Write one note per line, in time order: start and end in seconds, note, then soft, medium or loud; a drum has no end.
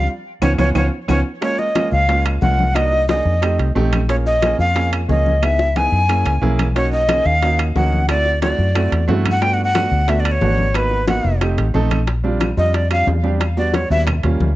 0.42 0.54 C#2 medium
0.42 0.52 B3 medium
0.42 0.52 C#4 medium
0.42 0.52 F4 medium
0.42 0.53 C#5 medium
0.42 low bongo loud
0.42 high conga medium
0.42 high timbale medium
0.42 claves medium
0.58 0.71 C#2 medium
0.58 0.69 B3 medium
0.58 0.69 C#4 medium
0.58 0.69 F4 medium
0.58 0.69 C#5 medium
0.58 low bongo medium
0.58 high conga loud
0.58 high timbale medium
0.58 claves medium
0.75 0.88 C#2 medium
0.75 0.86 B3 medium
0.75 0.86 C#4 medium
0.75 0.86 F4 loud
0.75 0.86 C#5 medium
0.75 low bongo medium
0.75 high conga medium
0.75 high timbale medium
0.75 claves medium
1.08 1.21 C#2 medium
1.08 1.19 B3 medium
1.08 1.19 C#4 loud
1.08 1.19 F4 medium
1.08 1.20 C#5 medium
1.08 low bongo medium
1.08 high conga medium
1.08 high timbale medium
1.08 claves medium
1.41 1.65 G#3 medium
1.41 1.65 A#3 medium
1.41 1.66 C#4 medium
1.41 1.66 F4 medium
1.41 1.60 C#5 loud
1.41 high bongo medium
1.41 high conga soft
1.41 high timbale medium
1.59 1.92 D#5 medium
1.59 high bongo soft
1.59 high conga soft
1.75 1.99 G#3 medium
1.75 1.99 A#3 medium
1.75 1.99 C#4 medium
1.75 1.99 F4 medium
1.75 high bongo medium
1.75 high conga medium
1.75 high timbale medium
1.75 claves medium
1.92 2.39 C#2 medium
1.92 2.23 F5 loud
1.92 high bongo soft
1.92 high conga soft
2.08 2.32 G#3 medium
2.08 2.32 A#3 medium
2.08 2.32 C#4 medium
2.08 2.33 F4 medium
2.08 high bongo medium
2.08 high conga soft
2.08 high timbale medium
2.25 high bongo soft
2.25 high conga soft
2.25 high timbale medium
2.25 claves medium
2.42 3.20 C2 medium
2.42 2.66 G#3 medium
2.42 2.66 A#3 medium
2.42 2.66 C#4 medium
2.42 2.66 F4 medium
2.42 2.77 F#5 loud
2.42 high bongo soft
2.42 low bongo medium
2.42 high conga medium
2.59 high conga medium
2.74 2.98 A#3 medium
2.74 2.99 D4 medium
2.74 2.99 D#4 medium
2.74 2.99 F#4 medium
2.74 3.08 D#5 loud
2.74 high bongo medium
2.74 high conga soft
2.74 high timbale medium
2.74 claves medium
2.92 high bongo soft
2.92 high conga soft
3.09 3.32 A#3 medium
3.09 3.32 D4 medium
3.09 3.33 D#4 medium
3.09 3.33 G#4 medium
3.09 3.72 D#5 medium
3.09 high bongo medium
3.09 high conga loud
3.09 high timbale medium
3.25 3.57 F2 medium
3.25 high bongo soft
3.25 high conga soft
3.42 3.65 A3 medium
3.42 3.66 C4 medium
3.42 3.66 D#4 medium
3.42 3.66 G4 medium
3.42 high bongo medium
3.42 high conga soft
3.42 high timbale medium
3.42 claves medium
3.59 3.74 C2 medium
3.59 high bongo soft
3.59 high conga soft
3.59 high timbale medium
3.75 4.53 A#1 medium
3.75 3.99 A3 loud
3.75 3.99 C4 medium
3.75 3.99 D#4 medium
3.75 4.00 G4 loud
3.75 high bongo soft
3.75 low bongo medium
3.75 high conga medium
3.93 high conga medium
3.93 high timbale medium
3.93 claves medium
4.08 4.32 A#3 medium
4.08 4.32 C#4 medium
4.08 4.33 F4 medium
4.08 4.33 G#4 medium
4.08 4.15 C#5 medium
4.08 high bongo medium
4.08 high timbale medium
4.26 4.57 D#5 medium
4.26 high bongo soft
4.26 high conga soft
4.42 4.65 A#3 medium
4.42 4.66 C#4 medium
4.42 4.66 F4 medium
4.42 4.66 G#4 medium
4.42 high bongo medium
4.42 high conga medium
4.42 high timbale medium
4.42 claves medium
4.59 5.05 F2 medium
4.59 4.91 F5 loud
4.59 high bongo soft
4.59 high conga soft
4.75 4.99 A#3 medium
4.75 4.99 C#4 medium
4.75 4.99 F4 medium
4.75 4.99 G#4 medium
4.75 high bongo medium
4.75 high conga soft
4.75 high timbale medium
4.92 high bongo soft
4.92 high conga soft
4.92 high timbale medium
4.92 claves medium
5.08 5.87 C#2 medium
5.08 5.32 A#3 medium
5.08 5.32 C#4 medium
5.08 5.32 F4 medium
5.08 5.33 G#4 medium
5.08 5.45 D#5 medium
5.08 high bongo soft
5.08 low bongo medium
5.08 high conga medium
5.26 high conga medium
5.42 5.66 B3 medium
5.42 5.66 D#4 medium
5.42 5.66 E4 medium
5.42 5.66 G#4 medium
5.42 5.78 E5 loud
5.42 high bongo medium
5.42 high conga soft
5.42 high timbale medium
5.42 claves medium
5.59 high bongo medium
5.59 high conga soft
5.76 5.99 B3 medium
5.76 5.99 D#4 medium
5.76 5.99 E4 medium
5.76 6.00 G#4 medium
5.76 6.43 G#5 medium
5.76 high conga medium
5.76 high timbale medium
5.92 6.23 F#2 medium
5.92 high conga soft
6.08 6.32 A#3 medium
6.08 6.32 C#4 medium
6.08 6.32 E4 medium
6.08 6.33 G#4 medium
6.08 low bongo medium
6.08 high conga soft
6.08 high timbale medium
6.08 claves medium
6.25 6.41 C#2 medium
6.25 low bongo medium
6.25 high conga soft
6.25 high timbale medium
6.42 7.20 B1 medium
6.42 6.65 A#3 loud
6.42 6.65 C#4 medium
6.42 6.66 E4 medium
6.42 6.66 G#4 loud
6.42 high conga medium
6.59 low bongo medium
6.59 high conga medium
6.59 high timbale medium
6.59 claves medium
6.75 6.99 A#3 medium
6.75 6.99 C#4 medium
6.75 6.99 D#4 medium
6.75 6.99 F#4 medium
6.75 6.91 C#5 medium
6.75 high bongo medium
6.75 high conga soft
6.75 high timbale medium
6.92 7.27 D#5 medium
6.92 high bongo soft
6.92 high conga soft
7.08 7.32 A#3 medium
7.08 7.32 C#4 medium
7.08 7.32 D#4 medium
7.08 7.32 G#4 medium
7.08 high bongo medium
7.08 high conga loud
7.08 high timbale loud
7.08 claves medium
7.25 7.72 D#2 medium
7.25 7.59 F5 loud
7.25 high bongo soft
7.25 high conga soft
7.42 7.65 A#3 medium
7.42 7.66 C#4 medium
7.42 7.66 D#4 medium
7.42 7.66 F#4 medium
7.42 high bongo medium
7.42 high conga soft
7.42 high timbale medium
7.59 high bongo soft
7.59 high conga soft
7.59 high timbale medium
7.59 claves medium
7.75 8.53 D2 medium
7.75 7.99 A#3 medium
7.75 7.99 C#4 medium
7.75 7.99 D#4 medium
7.75 7.99 F#4 medium
7.75 8.07 F#5 medium
7.75 high bongo soft
7.75 low bongo medium
7.75 high conga medium
7.92 high conga medium
8.09 8.32 A3 medium
8.09 8.32 C4 medium
8.09 8.32 E4 medium
8.09 8.33 F#4 medium
8.09 8.40 D5 loud
8.09 high bongo medium
8.09 high conga soft
8.09 high timbale medium
8.09 claves medium
8.26 high bongo soft
8.26 high conga soft
8.42 8.65 A3 medium
8.42 8.65 C4 medium
8.42 8.65 E4 medium
8.42 8.66 F#4 medium
8.42 9.05 D5 medium
8.42 high bongo medium
8.42 high conga loud
8.42 high timbale medium
8.59 8.90 F#2 medium
8.59 high bongo soft
8.59 high conga soft
8.75 8.98 A3 medium
8.75 8.99 C4 medium
8.75 8.99 E4 medium
8.75 8.99 F#4 medium
8.75 high bongo medium
8.75 high conga soft
8.75 high timbale medium
8.75 claves medium
8.92 9.07 E2 medium
8.92 high bongo soft
8.92 high conga soft
8.92 high timbale medium
9.08 9.86 G2 loud
9.08 9.31 A3 loud
9.08 9.32 C4 medium
9.08 9.32 E4 medium
9.08 9.32 F#4 loud
9.08 high bongo soft
9.08 low bongo medium
9.08 high conga medium
9.08 low timbale medium
9.26 high conga medium
9.26 high timbale medium
9.26 claves medium
9.31 9.44 F#5 loud
9.41 9.65 A3 medium
9.41 9.65 B3 medium
9.41 9.65 D4 medium
9.41 9.65 F#4 medium
9.41 9.55 G5 loud
9.41 high bongo medium
9.41 high conga soft
9.41 high timbale medium
9.53 9.64 F#5 medium
9.59 high bongo soft
9.59 high conga soft
9.64 10.11 F#5 loud
9.74 9.98 A3 medium
9.74 9.98 B3 medium
9.74 9.98 D4 medium
9.74 9.98 F#4 medium
9.74 high bongo medium
9.74 high conga loud
9.74 high timbale medium
9.74 claves medium
9.91 10.38 D2 medium
9.91 high bongo soft
9.91 high conga soft
10.08 10.31 A3 medium
10.08 10.31 B3 medium
10.08 10.32 D4 medium
10.08 10.32 F#4 medium
10.08 10.21 E5 medium
10.08 high bongo medium
10.08 high conga soft
10.08 high timbale medium
10.20 10.33 D5 medium
10.25 high bongo soft
10.25 high conga soft
10.25 high timbale medium
10.25 claves medium
10.32 10.78 C#5 medium
10.41 11.19 G#1 medium
10.41 10.65 A3 medium
10.41 10.65 B3 medium
10.41 10.65 D4 medium
10.41 10.65 F#4 medium
10.41 high bongo soft
10.41 low bongo medium
10.41 high conga medium
10.41 low timbale medium
10.58 high conga medium
10.74 10.98 A#3 medium
10.74 10.98 B3 medium
10.74 10.98 D#4 medium
10.74 10.98 F#4 medium
10.74 11.08 B4 loud
10.74 high bongo medium
10.74 high conga soft
10.74 high timbale loud
10.74 claves medium
10.91 high bongo soft
10.91 high conga soft
11.07 11.31 A#3 medium
11.07 11.31 B3 medium
11.07 11.31 D#4 medium
11.07 11.32 F#4 medium
11.07 11.39 F#5 medium
11.07 high bongo medium
11.07 high conga loud
11.07 high timbale medium
11.24 11.55 F1 medium
11.24 high bongo soft
11.24 high conga soft
11.41 11.64 A3 medium
11.41 11.64 C4 medium
11.41 11.65 D#4 medium
11.41 11.65 G4 medium
11.41 high bongo medium
11.41 high conga soft
11.41 high timbale medium
11.41 claves medium
11.58 11.73 A1 medium
11.58 low bongo medium
11.58 high conga soft
11.58 high timbale medium
11.74 12.52 A#1 medium
11.74 11.98 A3 loud
11.74 11.98 C4 medium
11.74 11.98 D#4 medium
11.74 11.98 A4 loud
11.74 low bongo medium
11.74 high conga medium
11.91 low bongo medium
11.91 high conga medium
11.91 high timbale medium
11.91 claves medium
12.07 high bongo medium
12.07 high conga soft
12.07 high timbale medium
12.24 12.47 G3 medium
12.24 12.47 C4 medium
12.24 12.48 D4 medium
12.24 12.48 F4 medium
12.24 high bongo soft
12.24 high conga soft
12.40 high bongo medium
12.40 high conga medium
12.40 high timbale medium
12.40 claves medium
12.57 13.04 F2 medium
12.57 12.81 G3 medium
12.57 12.81 C4 medium
12.57 12.81 D4 medium
12.57 12.81 F4 medium
12.57 12.77 D#5 medium
12.57 high bongo soft
12.57 high conga soft
12.74 12.91 D5 medium
12.74 high bongo medium
12.74 high conga soft
12.74 high timbale medium
12.90 13.14 G3 medium
12.90 13.14 C4 medium
12.90 13.14 D4 medium
12.90 13.15 F4 medium
12.90 13.07 F5 loud
12.90 high bongo soft
12.90 high conga soft
12.90 high timbale medium
12.90 claves medium
13.07 13.85 E2 medium
13.07 high bongo soft
13.07 low bongo medium
13.07 high conga medium
13.07 low timbale medium
13.23 13.40 G3 medium
13.23 13.40 C4 medium
13.23 13.41 D4 medium
13.23 13.41 G4 medium
13.23 high conga medium
13.40 high bongo medium
13.40 high conga soft
13.40 high timbale medium
13.40 claves medium
13.57 13.80 G3 medium
13.57 13.80 B3 medium
13.57 13.81 D4 medium
13.57 13.81 F#4 medium
13.57 13.76 D5 medium
13.57 high bongo soft
13.57 high conga soft
13.74 13.90 C#5 medium
13.74 high bongo medium
13.74 high conga loud
13.74 high timbale medium
13.90 14.21 D#2 medium
13.90 14.07 G3 medium
13.90 14.07 B3 medium
13.90 14.07 D4 medium
13.90 14.07 F#4 medium
13.90 14.01 E5 loud
13.90 high bongo soft
13.90 high conga soft
14.07 high bongo medium
14.07 high conga soft
14.07 low conga medium
14.07 high timbale loud
14.07 claves medium
14.23 14.39 D#2 medium
14.23 14.47 G3 medium
14.23 14.47 A#3 medium
14.23 14.47 C#4 medium
14.23 14.47 F4 medium
14.23 high bongo soft
14.23 high conga soft
14.23 low conga medium
14.23 high timbale medium
14.40 14.56 D2 medium
14.40 high bongo soft
14.40 low bongo medium
14.40 high conga medium